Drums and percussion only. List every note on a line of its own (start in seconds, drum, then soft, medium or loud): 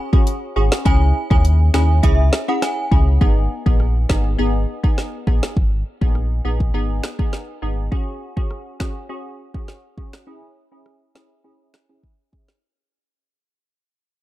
0.13 kick loud
0.27 closed hi-hat medium
0.72 cross-stick medium
0.72 snare loud
0.86 kick loud
0.86 closed hi-hat medium
1.31 kick loud
1.45 closed hi-hat medium
1.74 cross-stick medium
1.74 snare loud
2.03 kick loud
2.03 closed hi-hat medium
2.33 cross-stick loud
2.33 snare loud
2.62 cross-stick medium
2.62 snare medium
2.62 closed hi-hat medium
2.92 kick medium
3.21 kick loud
3.66 kick loud
3.80 cross-stick medium
4.10 kick medium
4.10 cross-stick medium
4.10 snare loud
4.84 kick medium
4.98 snare medium
5.27 kick medium
5.43 cross-stick medium
5.43 snare loud
5.57 kick loud
6.02 kick loud
6.15 cross-stick medium
6.60 kick medium
7.04 cross-stick medium
7.04 snare loud
7.19 kick loud
7.33 snare medium
7.92 kick loud
8.37 kick loud
8.51 cross-stick medium
8.80 kick medium
8.80 cross-stick medium
8.80 snare loud
9.54 kick medium
9.68 snare medium
9.98 kick medium
10.13 cross-stick medium
10.13 snare loud
10.86 cross-stick medium
11.16 cross-stick medium
11.16 snare loud
11.74 cross-stick medium
11.74 snare loud
12.04 kick medium
12.33 kick medium
12.48 snare medium